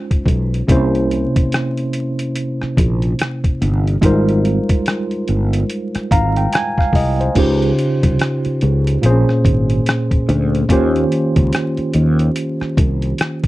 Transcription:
Already playing: G#3 C#4 D#4 F4 C5
0.11 kick, closed hi-hat
0.26 B1, kick, closed hi-hat
0.54 closed hi-hat
0.68 C2 C3 A#3 C#4 E4, kick, closed hi-hat
0.72 C5
0.95 closed hi-hat
1.11 closed hi-hat
1.36 muted fretless electric bass stroke, kick, closed hi-hat
1.52 cross-stick, closed hi-hat
1.77 closed hi-hat
1.93 closed hi-hat
2.19 closed hi-hat
2.36 closed hi-hat
2.62 muted fretless electric bass stroke, cross-stick
2.77 A#1, kick, closed hi-hat
3.02 closed hi-hat
3.19 cross-stick, closed hi-hat
3.44 kick, closed hi-hat
3.61 G1, closed hi-hat
3.87 closed hi-hat
4.01 G#1 G3 G#3 D#4 F4 A#4, kick, closed hi-hat
4.06 C5
4.29 closed hi-hat
4.45 closed hi-hat
4.69 muted fretless electric bass stroke, kick, closed hi-hat
4.86 cross-stick, closed hi-hat
5.11 closed hi-hat
5.28 G1, closed hi-hat
5.53 closed hi-hat
5.70 closed hi-hat
5.95 muted fretless electric bass stroke, cross-stick, closed hi-hat
6.11 G#1 F5 A#5, kick, closed hi-hat
6.37 G5, closed hi-hat
6.53 G#5, cross-stick, closed hi-hat
6.78 F5, kick, cross-stick
6.93 C2 D#5, kick, open hi-hat
7.21 C5, closed hi-hat
7.35 C#2 C#3 C#4 D#4 F4 G4, kick, closed hi-hat, crash
7.39 C5
7.62 closed hi-hat
7.79 closed hi-hat
8.03 C2, kick, closed hi-hat
8.19 cross-stick, closed hi-hat
8.45 muted fretless electric bass stroke, closed hi-hat
8.61 C#2, closed hi-hat
8.87 closed hi-hat
9.02 A#1 A#2 A#3 C4 G#4, closed hi-hat
9.06 C5
9.10 C#4
9.29 cross-stick
9.45 G#1, kick, closed hi-hat
9.70 closed hi-hat
9.86 cross-stick, closed hi-hat
10.11 kick, closed hi-hat
10.29 D2, closed hi-hat
10.55 closed hi-hat
10.68 D#2 D#3 A#3 C#4 F4 G4, kick, closed hi-hat
10.73 C5
10.96 closed hi-hat
11.12 closed hi-hat
11.36 C#2, kick, closed hi-hat
11.53 cross-stick, closed hi-hat
11.77 muted fretless electric bass stroke, closed hi-hat
11.94 D#2, closed hi-hat
12.19 closed hi-hat
12.36 closed hi-hat
12.61 muted fretless electric bass stroke, cross-stick
12.77 C2, kick, closed hi-hat
13.02 closed hi-hat
13.18 cross-stick, closed hi-hat
13.44 kick, closed hi-hat

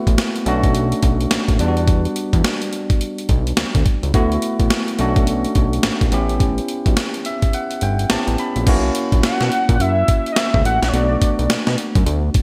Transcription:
Already playing: A3 B3 E4 F#4
0.07 A1, kick, closed hi-hat
0.18 snare, closed hi-hat
0.36 closed hi-hat
0.46 B1 A3 C#4 D4 F#4, closed hi-hat
0.64 kick, closed hi-hat
0.75 closed hi-hat
0.92 closed hi-hat
1.03 B1, kick, closed hi-hat
1.21 closed hi-hat
1.31 A1, snare, closed hi-hat
1.48 A1, kick, closed hi-hat
1.59 E2 G3 B3 D4 F4, closed hi-hat
1.68 F#4
1.77 closed hi-hat
1.88 kick, closed hi-hat
2.05 closed hi-hat
2.16 closed hi-hat
2.33 E2, kick, closed hi-hat
2.44 snare, closed hi-hat
2.62 closed hi-hat
2.73 closed hi-hat
2.90 kick, closed hi-hat
3.01 closed hi-hat
3.18 closed hi-hat
3.29 B1, kick, closed hi-hat
3.47 closed hi-hat
3.57 D2, snare, closed hi-hat
3.75 D2, kick, closed hi-hat
3.86 kick, closed hi-hat
4.03 C#2, closed hi-hat
4.14 D2 A3 B3 E4 F#4, kick, closed hi-hat
4.32 closed hi-hat
4.42 closed hi-hat
4.60 A1, kick, closed hi-hat
4.70 snare, closed hi-hat
4.88 closed hi-hat
4.99 B1 A3 C#4 D4 F#4, closed hi-hat
5.16 kick, closed hi-hat
5.27 closed hi-hat
5.45 closed hi-hat
5.55 B1, kick, closed hi-hat
5.73 closed hi-hat
5.83 A1, snare, closed hi-hat
6.01 A1, kick, closed hi-hat
6.12 A1 B3 C#4 E4 G4, closed hi-hat
6.29 closed hi-hat
6.40 kick, closed hi-hat
6.58 closed hi-hat
6.68 closed hi-hat
6.86 B1, kick, closed hi-hat
6.97 snare, closed hi-hat
7.14 closed hi-hat
7.25 E5, closed hi-hat
7.42 kick, closed hi-hat
7.53 F#5, closed hi-hat
7.71 closed hi-hat
7.81 G1 G5, closed hi-hat
7.99 closed hi-hat
8.10 A1 B3 C#4 E4 G4 A5, snare, closed hi-hat
8.28 A1, closed hi-hat
8.38 B5, closed hi-hat
8.56 A#1, closed hi-hat
8.67 B1 A#3 C#4 E4 F#4, kick, closed hi-hat, crash
8.95 closed hi-hat
9.12 A#1, kick, closed hi-hat
9.23 F#5, snare, closed hi-hat
9.41 B2, snare
9.52 closed hi-hat
9.69 A#2, kick, closed hi-hat
9.80 F#2 E5, closed hi-hat
10.08 kick, closed hi-hat
10.26 closed hi-hat
10.32 D#5
10.36 E5, snare, closed hi-hat
10.54 C#2, kick
10.65 A1 F#5, closed hi-hat
10.82 A#1, snare, closed hi-hat
10.88 C#5
10.93 B1 A3 B3 D4 F#4 D5, closed hi-hat
11.22 kick, closed hi-hat
11.39 B1, closed hi-hat
11.50 snare, closed hi-hat
11.67 B2, snare
11.78 closed hi-hat
11.95 F#2, kick, closed hi-hat
12.06 D2, closed hi-hat
12.34 kick, closed hi-hat

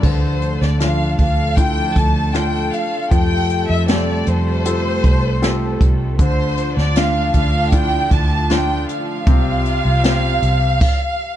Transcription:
0.03 D2 D3 F3 A3 D4 A4 C5, kick, crash
0.42 closed hi-hat
0.62 D2 D5, snare
0.80 D4 F4 F5, snare, closed hi-hat
1.18 D2 F5, kick, closed hi-hat
1.57 D4 E4 F4 G5, kick, closed hi-hat
1.96 D2 A5, kick, closed hi-hat
2.34 D4 F4 G5, snare, closed hi-hat
2.73 F5, closed hi-hat
3.11 F2 C3 F3 G3 G5, kick, closed hi-hat
3.50 closed hi-hat
3.69 F2 E5
3.88 F4 G4 A4 D5, snare, closed hi-hat
4.26 F2 C5, closed hi-hat
4.65 F4 G4 A4, closed hi-hat
5.04 C2, kick, closed hi-hat
5.42 F4 G4 A4, snare, closed hi-hat
5.81 C2, kick, closed hi-hat
6.19 D2 D3 F3 D4 C5, kick, closed hi-hat
6.57 closed hi-hat
6.77 D2 D5, snare
6.96 D4 F4 F5, snare, closed hi-hat
7.33 D2 F5, kick, closed hi-hat
7.72 D4 E4 F4 G5, kick, closed hi-hat
8.11 D2 A5, kick, closed hi-hat
8.50 D4 F4 G5, snare, closed hi-hat
8.89 F5, closed hi-hat
9.26 C2 C3 G3 F4, kick, closed hi-hat
9.65 closed hi-hat
9.85 C2
10.04 C4 F4 G4, snare, closed hi-hat
10.42 C2, closed hi-hat
10.81 kick, crash

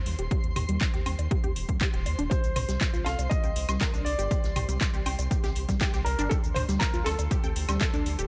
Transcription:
Already playing: C5 C6
0.06 D#2, open hi-hat
0.19 D#1 G4, closed hi-hat
0.31 G4, kick, closed hi-hat, high bongo
0.44 D#2, closed hi-hat
0.56 D#2 G4, mid tom, open hi-hat, high woodblock
0.69 D#2 G3, closed hi-hat
0.81 kick, clap, closed hi-hat
0.94 D#2 G4, closed hi-hat
1.06 D#2 G5, open hi-hat, high conga, high woodblock
1.19 D#2, closed hi-hat, high bongo
1.31 G4, kick, closed hi-hat
1.44 D#2 G4, closed hi-hat, high conga
1.56 D#1, open hi-hat
1.69 D#2 G3, kick, closed hi-hat, high conga
1.81 G4, kick, clap, closed hi-hat
1.94 D#1 G4, closed hi-hat
2.06 D#2, open hi-hat, high bongo
2.19 D#1 D4, closed hi-hat
2.30 G4 C5, kick, closed hi-hat, shaker
2.44 C2, closed hi-hat, shaker
2.56 C2 C5, closed hi-hat, mid tom, open hi-hat, high woodblock
2.69 C2 G3, snare, closed hi-hat, shaker
2.81 kick, snare, clap, closed hi-hat, shaker
2.94 C2 F4, closed hi-hat, shaker
3.05 C2 A4 F5, snare, closed hi-hat, open hi-hat, high conga, high woodblock
3.19 C2, closed hi-hat, high bongo, shaker
3.30 G4 D#5, kick, closed hi-hat, shaker
3.44 C2 G5, closed hi-hat, high conga, shaker
3.56 C2, closed hi-hat, open hi-hat
3.69 C2 G3, snare, closed hi-hat, high conga, high woodblock, shaker
3.81 A#4, kick, snare, clap, closed hi-hat, shaker
3.94 C2 D4, closed hi-hat, shaker
4.05 C2 D5, closed hi-hat, open hi-hat
4.19 G1 G4, closed hi-hat, shaker
4.31 G4, kick, closed hi-hat, high bongo, shaker
4.44 C2, snare, closed hi-hat, shaker
4.56 C2 G4, closed hi-hat, mid tom, open hi-hat, high woodblock
4.69 C2 G3, closed hi-hat, shaker
4.81 kick, snare, clap, closed hi-hat, shaker
4.94 C2 G4, closed hi-hat, shaker
5.05 C2 G5, closed hi-hat, open hi-hat, high conga, high woodblock
5.19 C2, closed hi-hat, high bongo, shaker
5.31 G4, kick, closed hi-hat, shaker
5.44 C2 G4, snare, closed hi-hat, high conga, shaker
5.55 C2, closed hi-hat, open hi-hat
5.68 C2 G3, kick, snare, closed hi-hat, high conga, shaker
5.81 G4, kick, snare, clap, closed hi-hat, shaker
5.93 C2 G4, snare, closed hi-hat, shaker
6.05 C2 A#4, closed hi-hat, open hi-hat, high bongo
6.19 G1 D4, closed hi-hat, shaker
6.29 G4 A4, kick, closed hi-hat, shaker
6.43 D2, closed hi-hat, shaker
6.54 D2 C5, closed hi-hat, mid tom, open hi-hat, high woodblock
6.68 D2 G3, snare, closed hi-hat, shaker
6.79 A#4, kick, snare, clap, closed hi-hat, shaker
6.94 D2 F4, closed hi-hat, shaker
7.04 D2 A4, snare, closed hi-hat, open hi-hat, high conga, high woodblock
7.19 D2, closed hi-hat, high bongo, shaker
7.31 G4, kick, closed hi-hat, shaker
7.44 D2 G5, closed hi-hat, high conga, shaker
7.55 D2, closed hi-hat, open hi-hat
7.68 D2 G3, snare, closed hi-hat, high conga, high woodblock, shaker
7.80 A4, kick, snare, clap, closed hi-hat, shaker
7.94 D2 D4, closed hi-hat, shaker
8.06 D2, closed hi-hat, open hi-hat
8.19 D1 G4, closed hi-hat, shaker

